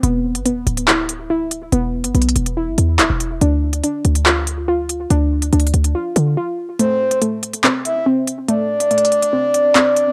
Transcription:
0.03 0.36 E1 loud
0.03 0.44 B3 medium
0.03 closed hi-hat medium
0.35 0.52 G1 loud
0.35 closed hi-hat medium
0.46 1.71 B3 medium
0.46 closed hi-hat medium
0.51 0.66 E1 loud
0.67 1.68 D1 loud
0.67 closed hi-hat medium
0.77 closed hi-hat medium
0.88 1.29 E4 medium
0.88 clap loud
1.09 closed hi-hat medium
1.30 2.56 E4 medium
1.51 closed hi-hat medium
1.72 2.06 E1 loud
1.72 2.13 B3 medium
1.72 closed hi-hat medium
2.04 2.14 G1 loud
2.04 closed hi-hat medium
2.15 2.35 B1 loud
2.15 3.41 B3 medium
2.15 closed hi-hat medium
2.22 closed hi-hat medium
2.29 closed hi-hat medium
2.36 2.69 E1 loud
2.36 closed hi-hat medium
2.46 closed hi-hat medium
2.57 2.98 E4 medium
2.67 2.77 G1 loud
2.78 3.01 E2 loud
2.78 closed hi-hat medium
2.99 3.09 D1 loud
2.99 3.41 E4 medium
2.99 clap loud
2.99 closed hi-hat medium
3.10 3.40 E1 loud
3.20 closed hi-hat medium
3.41 3.82 D2 loud
3.41 3.82 D4 medium
3.41 closed hi-hat medium
3.73 closed hi-hat medium
3.84 5.09 D4 medium
3.84 closed hi-hat medium
4.05 5.06 D2 loud
4.05 closed hi-hat medium
4.15 closed hi-hat medium
4.26 4.67 F4 medium
4.26 clap loud
4.47 closed hi-hat medium
4.68 5.94 F4 medium
4.89 closed hi-hat medium
5.10 5.51 D2 loud
5.10 5.51 D4 medium
5.10 closed hi-hat medium
5.42 closed hi-hat medium
5.53 5.73 D2 loud
5.53 6.79 D4 medium
5.53 closed hi-hat medium
5.60 closed hi-hat medium
5.67 closed hi-hat medium
5.74 5.94 D2 loud
5.74 closed hi-hat medium
5.84 closed hi-hat medium
5.95 6.36 F4 medium
6.16 6.36 D3 loud
6.16 closed hi-hat medium
6.37 6.79 F4 medium
6.79 7.20 A3 medium
6.79 7.19 C5 loud
6.79 closed hi-hat medium
7.11 closed hi-hat medium
7.22 8.47 A3 medium
7.22 closed hi-hat medium
7.43 closed hi-hat medium
7.53 closed hi-hat medium
7.64 8.05 C4 medium
7.64 clap loud
7.85 8.05 E5 medium
7.85 closed hi-hat medium
8.06 9.32 C4 medium
8.27 closed hi-hat medium
8.48 8.90 A3 medium
8.48 10.12 D5 loud
8.48 closed hi-hat medium
8.80 closed hi-hat medium
8.91 10.12 A3 medium
8.91 closed hi-hat medium
8.98 closed hi-hat medium
9.05 closed hi-hat medium
9.12 closed hi-hat medium
9.22 closed hi-hat medium
9.33 9.74 C4 medium
9.54 closed hi-hat medium
9.75 10.12 C4 medium
9.75 clap loud
9.75 closed hi-hat medium
9.96 closed hi-hat medium

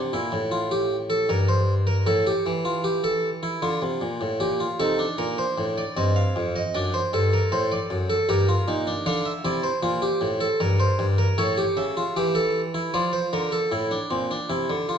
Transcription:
0.00 0.13 C3 medium
0.13 0.32 A#2 medium
0.13 0.37 E4 medium
0.32 1.26 A2 medium
0.51 0.70 F4 medium
0.71 0.95 G4 medium
1.10 1.29 A4 medium
1.29 2.04 G2 medium
1.29 1.48 A#4 medium
1.48 1.72 C5 medium
1.87 2.06 A#4 medium
2.07 2.30 A2 medium
2.07 2.25 A4 medium
2.27 2.50 G4 medium
2.46 3.59 E3 medium
2.65 2.84 F4 medium
2.84 3.03 G4 medium
3.04 3.28 A4 medium
3.43 3.62 E4 medium
3.62 3.81 D3 medium
3.62 4.38 F4 medium
3.82 4.01 C3 medium
4.01 4.20 A#2 medium
4.21 4.40 A2 medium
4.40 4.65 A#2 medium
4.40 4.59 G4 medium
4.60 4.79 F4 medium
4.80 5.04 C3 medium
4.80 4.99 D#4 medium
4.80 5.04 A4 medium
4.99 5.94 D4 medium
5.18 5.43 A#2 medium
5.18 5.38 A#4 medium
5.38 5.63 C5 medium
5.58 5.82 A2 medium
5.78 5.96 D5 medium
5.97 6.21 G2 medium
5.97 6.72 C4 medium
5.97 6.16 D#5 medium
6.16 6.40 F5 medium
6.36 6.60 F2 medium
6.56 6.74 D#5 medium
6.74 6.99 F#2 medium
6.74 6.99 D4 medium
6.74 6.93 D5 medium
6.94 7.18 C5 medium
7.13 7.37 G2 medium
7.13 8.08 A4 medium
7.33 7.52 A#4 medium
7.52 7.76 A2 medium
7.52 7.71 C5 medium
7.72 7.96 D5 medium
7.90 8.15 F#2 medium
8.10 8.29 A4 medium
8.29 8.53 G2 medium
8.29 8.48 G4 medium
8.29 9.04 A#4 medium
8.49 8.67 F4 medium
8.68 8.92 A#2 medium
8.68 8.87 D#4 medium
8.87 9.05 D4 medium
9.06 9.30 D3 medium
9.06 9.30 D4 medium
9.06 9.25 F5 medium
9.25 9.44 E5 medium
9.45 9.69 C3 medium
9.45 9.69 E4 medium
9.45 9.63 D5 medium
9.63 10.57 C5 medium
9.83 10.07 A#2 medium
9.83 10.02 F4 medium
10.02 10.26 G4 medium
10.21 10.45 A2 medium
10.40 10.60 A4 medium
10.60 10.84 G2 medium
10.60 11.17 A#4 medium
10.80 11.04 C5 medium
10.99 11.23 G2 medium
11.18 11.37 A#4 medium
11.38 11.62 A2 medium
11.38 11.57 A4 medium
11.38 11.62 C#5 medium
11.57 11.82 G4 medium
11.77 12.01 C#3 medium
11.77 12.90 E5 medium
11.97 12.16 F4 medium
12.16 12.92 E3 medium
12.16 12.35 G4 medium
12.35 12.59 A4 medium
12.74 12.93 E4 medium
12.94 13.18 F3 medium
12.94 13.70 F4 medium
12.94 13.13 D5 medium
13.13 13.32 C5 medium
13.33 13.57 D3 medium
13.33 13.52 A#4 medium
13.52 13.71 A4 medium
13.72 13.96 A2 medium
13.72 13.91 E4 medium
13.91 14.10 D4 medium
14.11 14.35 A#2 medium
14.11 14.30 C4 medium
14.31 14.50 D4 medium
14.50 14.69 C3 medium
14.50 14.74 E4 medium
14.70 14.94 D3 medium
14.89 14.98 F4 medium

